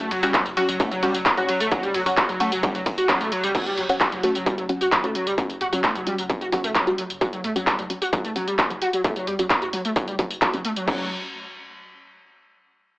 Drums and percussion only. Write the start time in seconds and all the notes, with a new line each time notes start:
0.00 closed hi-hat, tambourine
0.11 mid tom, open hi-hat, ride
0.23 closed hi-hat, mid tom, tambourine
0.34 kick, clap, closed hi-hat, ride, tambourine
0.46 closed hi-hat, mid tom, tambourine
0.57 open hi-hat, ride
0.69 closed hi-hat, tambourine
0.80 kick, closed hi-hat, ride, tambourine
0.92 closed hi-hat, tambourine
1.03 open hi-hat, ride
1.14 closed hi-hat, tambourine
1.26 kick, clap, closed hi-hat, ride, tambourine
1.37 closed hi-hat, tambourine
1.49 open hi-hat, ride
1.60 closed hi-hat, tambourine
1.72 kick, closed hi-hat, ride, tambourine
1.83 closed hi-hat, tambourine
1.94 mid tom, open hi-hat, ride
2.06 closed hi-hat, mid tom, tambourine
2.17 kick, clap, closed hi-hat, ride, tambourine
2.29 closed hi-hat, mid tom, tambourine
2.40 open hi-hat, ride
2.52 closed hi-hat, tambourine
2.63 kick, closed hi-hat, ride, tambourine
2.75 closed hi-hat, tambourine
2.86 kick, open hi-hat, ride
2.98 closed hi-hat, tambourine
3.09 kick, clap, closed hi-hat, ride, tambourine
3.21 closed hi-hat, mid tom, tambourine
3.32 open hi-hat, ride
3.44 closed hi-hat, tambourine
3.55 kick, closed hi-hat, tambourine, crash
3.66 closed hi-hat, tambourine
3.78 mid tom, open hi-hat
3.89 closed hi-hat, mid tom, tambourine
4.01 kick, clap, closed hi-hat, tambourine
4.12 closed hi-hat, mid tom, tambourine
4.23 open hi-hat
4.35 closed hi-hat, tambourine
4.46 kick, closed hi-hat, tambourine
4.58 closed hi-hat, tambourine
4.69 open hi-hat
4.81 closed hi-hat, tambourine
4.92 kick, clap, closed hi-hat, tambourine
5.04 closed hi-hat, tambourine
5.15 open hi-hat
5.27 closed hi-hat, tambourine
5.38 kick, closed hi-hat, tambourine
5.50 closed hi-hat, tambourine
5.61 mid tom, open hi-hat
5.73 closed hi-hat, mid tom, tambourine
5.84 kick, clap, closed hi-hat, tambourine
5.95 closed hi-hat, mid tom, tambourine
6.07 open hi-hat
6.18 closed hi-hat, tambourine
6.30 kick, closed hi-hat, tambourine
6.41 closed hi-hat, tambourine
6.52 kick, open hi-hat
6.64 closed hi-hat, tambourine
6.75 kick, clap, closed hi-hat, tambourine
6.87 closed hi-hat, tambourine
6.98 open hi-hat
7.10 closed hi-hat, tambourine
7.21 kick, closed hi-hat, tambourine
7.33 closed hi-hat, tambourine
7.44 mid tom, open hi-hat
7.56 closed hi-hat, mid tom, tambourine
7.67 kick, clap, closed hi-hat, tambourine
7.79 closed hi-hat, mid tom, tambourine
7.90 open hi-hat
8.02 closed hi-hat, tambourine
8.13 kick, closed hi-hat, tambourine
8.25 closed hi-hat, tambourine
8.36 open hi-hat
8.48 closed hi-hat, tambourine
8.59 kick, clap, closed hi-hat, tambourine
8.70 closed hi-hat, tambourine
8.82 open hi-hat
8.93 closed hi-hat, tambourine
9.04 kick, closed hi-hat, tambourine
9.16 closed hi-hat, tambourine
9.27 mid tom, open hi-hat
9.39 closed hi-hat, mid tom, tambourine
9.50 kick, clap, closed hi-hat, tambourine
9.62 closed hi-hat, mid tom, tambourine
9.73 open hi-hat
9.85 closed hi-hat, tambourine
9.96 kick, closed hi-hat, tambourine
10.08 closed hi-hat, tambourine
10.19 kick, open hi-hat
10.31 closed hi-hat, tambourine
10.42 kick, clap, closed hi-hat, tambourine
10.54 closed hi-hat, tambourine
10.65 open hi-hat
10.76 closed hi-hat, tambourine
10.88 kick, crash